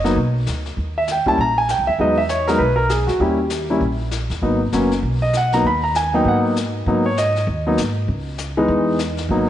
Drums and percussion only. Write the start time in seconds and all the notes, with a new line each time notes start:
0.05 snare
0.16 brush sweep, kick
0.46 snare, hi-hat pedal
0.65 snare
0.77 brush sweep, kick
1.08 snare, hi-hat pedal
1.26 kick
1.38 brush sweep, kick
1.69 snare, hi-hat pedal
1.99 brush sweep, kick
2.29 snare, hi-hat pedal
2.47 snare
2.59 brush sweep, kick
2.89 snare, hi-hat pedal
3.08 snare
3.20 brush sweep, kick
3.50 snare, hi-hat pedal
3.81 brush sweep, kick
4.11 snare, hi-hat pedal
4.30 snare
4.42 brush sweep, kick
4.72 snare, hi-hat pedal
4.91 snare
5.03 brush sweep, kick
5.33 snare, hi-hat pedal
5.52 snare
5.64 brush sweep, kick
5.95 snare, hi-hat pedal
6.25 brush sweep, kick
6.56 snare, hi-hat pedal
6.86 brush sweep, kick
7.17 snare, hi-hat pedal
7.36 snare
7.47 brush sweep, kick
7.78 snare, hi-hat pedal
8.08 brush sweep, kick
8.38 snare, hi-hat pedal
8.69 brush sweep, kick
8.99 snare, hi-hat pedal
9.17 snare
9.29 brush sweep, kick